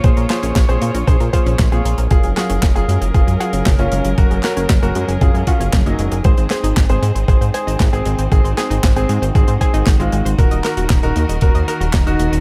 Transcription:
<<
  \new Staff \with { instrumentName = "Grand piano" } { \time 4/4 \key aes \mixolydian \tempo 4 = 116 <aes' c''>16 r16 <aes' c''>8 r16 <aes' c''>8 r16 <aes' c''>16 r16 <aes' c''>8 r16 <f' aes'>8 r16 | <f' aes'>16 r16 <f' aes'>8 r16 <f' aes'>8 r16 <f' aes'>16 r16 <f' aes'>8 r16 <des' f'>8 r16 | <ges' bes'>16 r16 <ges' bes'>8 r16 <ges' bes'>8 r16 <f' aes'>16 r16 <des' f'>8 r16 <ges ees'>8 r16 | <aes' c''>16 r16 <aes' c''>8 r16 <aes' c''>8 r16 <aes' c''>16 r16 <aes' c''>8 r16 <c' aes'>8 r16 |
<c' aes'>16 r16 <c' aes'>8 r16 <c' aes'>8 r16 <c' aes'>16 r16 <c' aes'>8 r16 <aes f'>8 r16 | <ges' bes'>16 r16 <ges' bes'>8 r16 <ges' bes'>8 r16 <ges' bes'>16 r16 <ges' bes'>8 r16 <ees' ges'>8 r16 | }
  \new Staff \with { instrumentName = "Synth arpeggio sound" } { \time 4/4 \key aes \mixolydian r16 bes'16 f'16 des'16 r16 c'16 bes16 bes'16 r16 bes'16 f'16 des'16 r16 c'16 bes16 bes'16 | r16 aes'16 ges'16 des'16 r16 bes16 aes16 aes'16 r16 aes'16 ges'16 des'16 r16 bes16 aes16 aes'16 | r16 aes'16 ges'16 des'16 r16 bes16 aes16 aes'16 r16 aes'16 ges'16 des'16 r16 bes16 aes16 aes'16 | r16 c''16 aes'16 ees'16 r16 c'16 aes16 c''16 r16 c''16 aes'16 ees'16 r16 c'16 aes16 c''16 |
r16 c''16 aes'16 ees'16 r16 c'16 aes16 c''16 r16 c''16 aes'16 ees'16 r16 c'16 aes16 c''16 | r16 ees''16 bes'16 ges'16 r16 ees'16 bes16 ees''16 r16 ees''16 bes'16 ges'16 r16 ees'16 bes16 ees''16 | }
  \new Staff \with { instrumentName = "String section" } { \time 4/4 \key aes \mixolydian << { <bes f' des''>1 | <ges des' bes'>1~ | <ges des' bes'>1 | c'1~ |
c'1 | <ees bes'>1 | } \\ { c''1 | aes'1~ | aes'1 | ees'1 |
ges'1~ | ges'1 | } >> }
  \new Staff \with { instrumentName = "Analog synth bass" } { \clef bass \time 4/4 \key aes \mixolydian bes,,16 bes,,16 r16 bes,,16 bes,,16 bes,,16 bes,16 bes,,16 bes,,16 bes,16 r16 bes,,16 bes,,16 bes,,16 bes,,16 bes,,16 | ges,,16 ges,,16 r16 ges,,16 ges,,16 ges,,16 ges,16 ges,,16 ges,,16 ges,16 r16 ges,,16 ges,,16 ges,,16 ges,,16 ges,,16 | ges,,16 ges,,16 r16 ges,,16 ges,,16 ges,,16 ges,16 ges,,16 ges,,16 ges,16 r16 ges,,16 ges,,16 ges,,16 ges,,16 ges,,16 | aes,,16 aes,,16 r16 aes,,16 aes,,16 aes,,16 aes,16 aes,,16 aes,,16 aes,16 r16 aes,,16 aes,,16 aes,,16 aes,,16 aes,,16 |
aes,,16 aes,,16 r16 aes,,16 aes,,16 aes,,16 aes,16 aes,,16 aes,,16 aes,16 r16 aes,,16 aes,,16 aes,,16 aes,,16 aes,,16 | ees,,16 ees,,16 r16 ees,,16 ees,,16 ees,,16 ees,16 ees,,16 ees,,16 ees,16 r16 ees,,16 ees,,16 ees,,16 ees,,16 ees,,16 | }
  \new DrumStaff \with { instrumentName = "Drums" } \drummode { \time 4/4 <hh bd>16 hh16 <hc hh sn>16 hh16 <hc hh bd sn>16 hh16 hh16 hh16 <hh bd>16 hh16 <hh bd>16 hh16 <hc hh bd sn>16 hh16 hh16 hh16 | <hh bd>16 hh16 <hc hh sn>16 hh16 <hc hh bd sn>16 hh16 hh16 hh16 <hh bd>16 hh16 hh16 hh16 <hc hh bd sn>16 hh16 hh16 hh16 | <hh bd>16 hh16 <hc hh sn>16 hh16 <hc hh bd sn>16 hh16 hh16 hh16 <hh bd>16 hh16 <hh bd>16 hh16 <hc hh bd sn>16 hh16 hh16 hh16 | <hh bd>16 hh16 <hc hh sn>16 hh16 <hc hh bd sn>16 hh16 hh16 hh16 <hh bd>16 hh16 hh16 hh16 <hc hh bd sn>16 hh16 hh16 hh16 |
<hh bd>16 hh16 <hc hh sn>16 hh16 <hc hh bd sn>16 hh16 hh16 hh16 <hh bd>16 hh16 <hh bd>16 hh16 <hc hh bd sn>16 hh16 hh16 hh16 | <hh bd>16 hh16 <hc hh sn>16 hh16 <hc hh bd sn>16 hh16 hh16 hh16 <hh bd>16 hh16 hh16 hh16 <hc hh bd sn>16 hh16 hh16 hh16 | }
>>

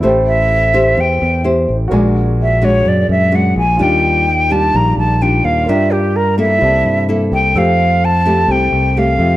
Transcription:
<<
  \new Staff \with { instrumentName = "Flute" } { \time 4/4 \key a \phrygian \tempo 4 = 128 r8 e''4. g''4 r4 | r4 e''8 cis''8 d''8 e''8 fis''8 aes''8 | g''4. a''8 bes''8 a''8 g''8 f''8 | e''8 g'8 bes'8 e''4. r8 g''8 |
f''4 a''4 g''4 f''4 | }
  \new Staff \with { instrumentName = "Grand piano" } { \time 4/4 \key a \phrygian <e' a' c'' g''>1 | <fis' bes' d'' aes''>1 | <ees' f' d'' g''>1 | <f' bes' d'' g''>2 <e' d'' a''>2 |
<a' g'' e'''>2.~ <a' g'' e'''>8 <f' a' e'' g''>8 | }
  \new Staff \with { instrumentName = "Nylon-string guitar" } { \time 4/4 \key a \phrygian << { <e' g' c''>4 r8 <e' g' c''>4. <e' g' c''>8 r8 | <aes d' fis'>4. <aes d' fis'>4. <aes d' fis'>8 r8 | <g d' f'>4 r8 <g d' f'>4. <g d' f'>4 | <d' f' bes'>4 r8 <bes e' a'>4. <bes e' a'>4 |
<a g'>4 r8 <a e' g'>4. <a g'>8 r8 | } \\ { a2 e2 | bes,2 bes,2 | ees2 bes,2 | g2 c2 |
f2 c2 | } >> }
  \new Staff \with { instrumentName = "Fingered electric bass" } { \clef bass \time 4/4 \key a \phrygian a,,2 e,8 e,4 a,,8 | bes,,2 fis,8 fis,4 bes,,8 | ees,2 bes,,8 bes,,4 ees,8 | g,2 c,8 g,4 c,8 |
f,2 c,8 c,4 f,8 | }
>>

